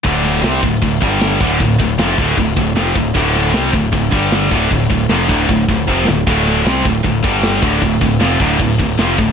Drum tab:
CC |--------|--------|--------|--------|
RD |xxxxxxxx|xxxxxxxx|xxxxxxxx|xxxxxx--|
SD |-oo---o-|--o--oo-|-oo---o-|--o--o-o|
BD |o--ooo-o|oo-ooo-o|o--ooo-o|oo-oooo-|

CC |x-------|--------|
RD |-xxxxxxx|xxxxxxxx|
SD |-oo--oo-|-oo---o-|
BD |o--ooo-o|oo-ooo-o|